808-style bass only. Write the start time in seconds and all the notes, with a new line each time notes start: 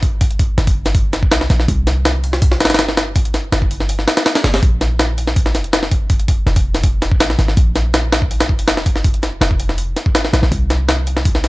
Already playing: G1
0.58 G1
1.31 C2
1.50 A#1
1.68 C2
2.60 G1
3.52 G1
4.44 G1
4.63 A#1
5.55 F1
6.47 F1
7.20 A#1
7.39 G#1
7.57 A#1
8.49 F1
9.41 F1
10.33 A#1
10.43 A#1
10.52 C2
11.44 G1